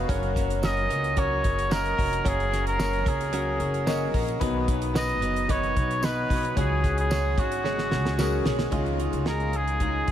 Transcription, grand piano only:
0.00 0.11 B3 medium
0.00 0.11 D#4 medium
0.00 0.09 F#4 medium
0.00 0.11 B4 medium
0.00 0.11 D#5 medium
0.00 0.11 F5 loud
0.08 0.57 A#3 medium
0.08 0.57 C#4 medium
0.08 0.57 F#4 medium
0.08 0.57 A#4 medium
0.08 0.58 C#5 loud
0.62 1.11 A#3 medium
0.62 1.11 C#4 medium
0.62 1.11 F#4 medium
0.62 1.11 A#4 medium
0.62 1.12 C#5 medium
1.16 1.65 A#3 medium
1.16 1.65 C#4 medium
1.16 1.65 F#4 medium
1.16 1.65 A#4 medium
1.16 1.66 C#5 medium
1.70 2.18 A#3 medium
1.70 2.19 C#4 medium
1.70 2.19 F#4 medium
1.70 2.19 A#4 medium
1.70 2.19 D#5 medium
2.24 2.73 A#3 medium
2.24 2.73 C#4 medium
2.24 2.73 F#4 medium
2.24 2.73 A#4 medium
2.24 2.73 C#5 medium
2.78 3.27 A#3 medium
2.78 3.27 C#4 medium
2.78 3.27 F#4 medium
2.78 3.27 A#4 medium
2.78 3.27 C#5 medium
3.32 3.81 A#3 medium
3.32 3.81 C#4 medium
3.32 3.81 F#4 medium
3.32 3.81 A#4 medium
3.32 3.81 C#5 medium
3.86 4.35 A#3 medium
3.86 4.35 C#4 medium
3.86 4.35 F#4 medium
3.86 4.35 A#4 medium
3.86 4.35 D#5 loud
4.40 5.18 B2 medium
4.40 4.88 B3 medium
4.40 4.89 D#4 medium
4.40 4.89 F#4 medium
4.40 4.89 B4 medium
4.40 4.89 D#5 loud
4.94 5.43 B3 medium
4.94 5.42 D#4 medium
4.94 5.43 F#4 medium
4.94 5.43 B4 medium
4.94 5.43 D#5 medium
5.48 5.97 B3 medium
5.48 5.97 D#4 medium
5.48 5.97 F#4 medium
5.48 5.97 B4 medium
5.48 5.97 D#5 medium
6.01 6.50 B3 medium
6.01 6.50 D#4 medium
6.01 6.51 F#4 medium
6.01 6.51 B4 medium
6.01 6.51 D#5 medium
6.55 7.33 C#3 medium
6.55 7.04 G#3 medium
6.55 7.04 C#4 medium
6.55 7.04 F#4 medium
6.55 7.05 G#4 medium
6.55 7.05 C#5 medium
7.10 7.58 G#3 medium
7.10 7.58 C#4 medium
7.10 7.59 F#4 medium
7.10 7.59 G#4 medium
7.10 7.59 C#5 medium
7.64 8.13 G#3 medium
7.64 8.13 C#4 medium
7.64 8.13 F#4 medium
7.64 8.13 G#4 medium
7.64 8.13 C#5 medium
8.18 8.67 G#3 medium
8.18 8.67 C#4 medium
8.18 8.67 F#4 medium
8.18 8.67 G#4 medium
8.18 8.67 A#4 loud
8.71 9.49 C#3 medium
8.71 9.20 G#3 loud
8.71 9.20 C#4 loud
8.71 9.21 D#4 medium
8.71 9.21 F4 loud
9.25 9.74 G#3 medium
9.25 9.74 C#4 medium
9.25 9.75 D#4 medium
9.25 9.75 G#4 medium
9.81 10.12 G#3 medium
9.81 10.12 C#4 medium
9.81 10.12 D#4 medium
9.81 10.12 F4 medium

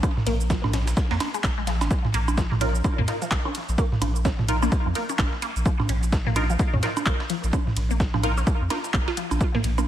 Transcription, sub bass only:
0.27 0.60 A#1 loud
0.64 0.94 A#1 medium
1.11 1.19 F2 loud
1.44 1.83 A#1 medium
1.81 1.89 G#1 loud
2.14 2.47 A#1 loud
2.52 2.82 A#1 medium
2.98 3.06 F2 medium
3.31 3.43 A#1 medium
3.69 3.76 A#1 medium
4.02 4.35 A#1 loud
4.39 4.69 A#1 medium
4.86 4.94 F2 medium
5.19 5.30 A#1 loud
5.56 5.64 A#1 medium
5.89 6.22 A#1 loud
6.26 6.57 A#1 medium
6.73 6.81 F2 medium
7.06 7.18 A#1 loud
7.44 7.51 A#1 medium
7.76 8.10 A#1 loud
8.14 8.44 A#1 medium
8.61 8.69 F2 medium
8.94 9.05 A#1 medium
9.31 9.39 A#1 medium
9.64 9.88 A#1 loud

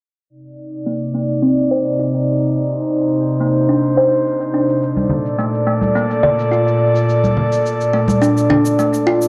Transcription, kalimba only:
0.86 1.13 A#3 medium
1.14 1.40 A#3 medium
1.42 1.68 C4 medium
1.71 1.97 C5 medium
1.99 2.26 D#4 medium
3.41 3.66 A#3 medium
3.69 3.95 D4 medium
3.97 4.23 C5 medium
4.54 4.70 D4 medium
5.39 5.66 A3 medium
5.67 5.93 A3 medium
5.95 6.21 A#3 medium
6.23 6.49 D5 medium
6.51 6.79 F4 medium
7.93 8.19 A3 medium
8.22 8.47 D4 medium
8.50 8.76 D4 medium
8.79 8.94 A3 medium
9.07 9.28 F4 loud

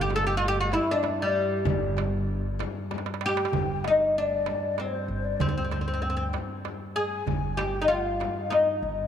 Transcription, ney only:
3.22 3.86 G5 medium
3.84 4.08 D#5 medium
4.08 4.16 D#5 medium
4.15 4.80 D5 medium
4.78 5.26 C5 medium
5.24 5.41 D5 medium
5.39 5.50 C5 medium
5.48 5.57 D5 medium
5.55 6.04 C5 medium
6.02 6.34 G5 medium
6.95 7.59 G#5 medium
7.58 7.91 G5 medium
7.90 8.54 F5 medium
8.53 9.07 D#5 medium

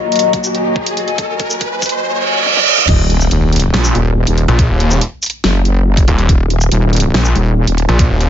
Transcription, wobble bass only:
2.89 3.29 D#1 loud
3.31 3.72 D#1 medium
3.95 4.25 D#1 loud
4.27 4.47 D#1 medium
5.44 6.06 F#1 loud
6.29 6.70 D#1 loud
6.71 7.12 D#1 loud
7.35 7.66 D#1 loud
7.67 7.87 D#1 loud

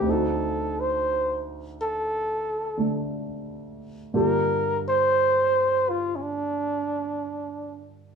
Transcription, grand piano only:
0.00 4.11 D2 soft
0.00 2.76 D3 soft
0.06 4.14 C4 soft
0.06 4.15 D#4 soft
0.12 4.17 F#4 soft
2.77 4.13 D3 soft
2.77 4.14 A3 soft
2.77 4.14 D4 soft
4.14 8.15 G2 soft
4.14 8.15 D3 soft
4.14 8.15 A#3 soft
4.14 8.15 F4 soft
4.14 8.15 G4 soft

